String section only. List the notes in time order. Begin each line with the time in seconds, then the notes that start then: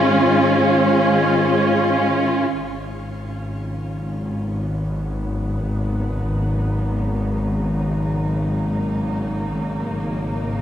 Already playing: G#2 D#3 G#3 C#4 F4
2.51 C#3
3.45 F#3
4.24 B3
5.68 D#4
8.53 A#3